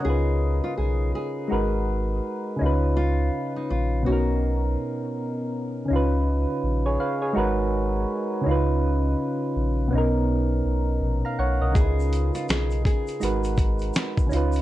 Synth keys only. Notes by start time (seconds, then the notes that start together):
Already playing: A#4 D#5
0.00 C#3 C#4
0.05 D#4 F4
0.09 B4
1.48 G#3 D#4 F#4 A#4
1.53 B4
2.56 C#3 C#4
2.61 D#4 F4
2.66 B4
4.02 B2 B3
4.07 C#4 D#4
4.12 A#4
5.85 C#3 C#4
5.90 D#4 F4
5.96 B4
6.86 G#4 C#5
7.00 B4 F5
7.22 G#4 C#5
7.33 G#3 D#4 F#4 A#4
7.38 B4
8.41 C#3 C#4
8.46 D#4 F4
8.51 B4
9.88 B2 B3
9.93 C#4 D#4
9.98 A#4
11.25 F5 A#5
11.39 C#5 F#5
11.61 A#4 D#5
11.71 C#3 C#4
11.76 D#4 E4
11.81 B4
11.85 F4
13.20 G#3 D#4 F#4 A#4
13.24 B4
14.26 C#3 C#4
14.31 D#4 F4
14.36 B4